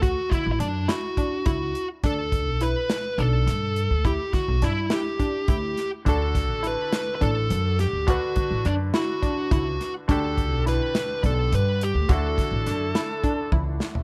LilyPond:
<<
  \new Staff \with { instrumentName = "Lead electric guitar" } { \time 7/8 \key d \major \tempo 4 = 104 fis'8 e'16. e'32 d'8 fis'4 fis'8. r16 | a'4 b'4 a'4. | g'8 fis'8 e'8 g'4 g'8. r16 | a'4 b'8.~ b'32 b'32 a'4 g'8 |
fis'4 d'8 fis'4 fis'8. r16 | a'4 b'4 a'8 b'8 g'8 | a'2~ a'8 r4 | }
  \new Staff \with { instrumentName = "Synth arpeggio sound" } { \time 7/8 \key d \major fis'4 d'8 e'8 d'8 e'4 | d'4 e'4 d'4 r8 | e'4 d'8 e'8 d'8 e'4 | d'4 e'4 d'4 r8 |
fis'4 d'8 e'8 d'8 e'4 | d'4 e'4 d'4 r8 | fis'4 d'8 e'8 d'8 e'4 | }
  \new Staff \with { instrumentName = "Grand piano" } { \time 7/8 \key d \major r2. r8 | r2. r8 | r2. r8 | <d d' fis' a'>2.~ <d d' fis' a'>8 |
<d d' fis' b'>2.~ <d d' fis' b'>8 | <d d' fis' g'>2.~ <d d' fis' g'>8 | <d d' e' fis'>2.~ <d d' e' fis'>8 | }
  \new Staff \with { instrumentName = "Upright bass" } { \clef bass \time 7/8 \key d \major d,16 r16 d16 a,,16 fis,8 r4 cis,8 r8 | d,8. b,,8 r8. b,,8 g,8. d,16~ | d,16 r16 d16 b,,16 g,8 r4 d,8 r8 | d,8. a,,8 r8. a,,8 fis,8. d,16~ |
d,16 r16 d16 a,,16 fis,8 r4 cis,8 r8 | d,8. b,,8 r8. b,,8 g,8. d,16 | d,8 d16 a,,16 fis,8 r4 cis,8 r8 | }
  \new DrumStaff \with { instrumentName = "Drums" } \drummode { \time 7/8 <hh bd>8 <hh bd>8 hh8 <hh sn>8 <hh bd>8 <hh bd>8 hh8 | <hh bd>8 <hh bd>8 hh8 <hh sn>8 <hh bd>8 <hh sn>8 hh8 | <hh bd>8 <hh bd sn>8 <hh sn>8 <hh sn>8 <hh bd>8 <hh bd>8 <hh sn>8 | <hh bd>8 <hh bd sn>8 hh8 <hh sn>8 <hh bd>8 hh8 <hh sn>8 |
<hh bd>8 <hh bd>8 hh8 <hh sn>8 <hh bd>8 <hh bd>8 <hh sn>8 | <hh bd>8 <hh bd>8 <hh sn>8 <hh sn>8 <hh bd>8 hh8 hh8 | <hh bd>8 <hh bd sn>8 <hh sn>8 <hh sn>8 <hh bd>8 <bd tommh>8 sn16 tomfh16 | }
>>